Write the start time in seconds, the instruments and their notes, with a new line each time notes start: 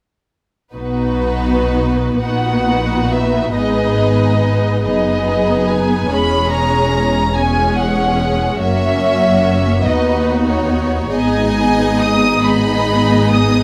0.74 double bass section B1, cello section B2, viola section B3 D#4, violin section F#4 B4
2.22 double bass section A#1, cello section A#2, viola section B3 D#4, violin section F#4 B4 F#5
3.12 violin section E5
3.54 double bass section G#1, cello section G#2, viola section B3 D#4, violin section G#4 B4 D#5
4.83 double bass section F#1, cello section F#2, viola section B3 D#4, violin section G#4 B4 D#5
5.68 violin section G#5
6.10 double bass section E1, cello section E2, viola section G#3 C#4, violin section G#4 C#5 B5
6.51 violin section A#5
7.35 viola section G#3 C#4, violin section G#4 C#5 G#5
7.78 violin section F#5
8.60 double bass section F#1, cello section F#2, viola section A#3 C#4, violin section F#4 C#5 E5
9.84 double bass section D#2, cello section D#2, viola section B3 D#4, violin section F#4 B4 D#5
10.47 violin section C#5
11.12 double bass section G#1, cello section G#2, viola section B3 D#4, violin section G#4 D#5 G#5
12.00 violin section D#6
12.43 viola section B3 D#4, violin section G#4 D#5 B5
13.32 violin section D#6